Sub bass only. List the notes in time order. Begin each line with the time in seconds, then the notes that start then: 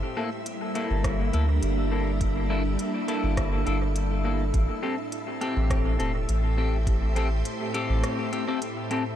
0.90 G1
1.34 D2
1.62 G1
3.23 G1
3.67 G1
4.54 A1
5.56 A1
6.00 E1
6.29 A1
7.89 A1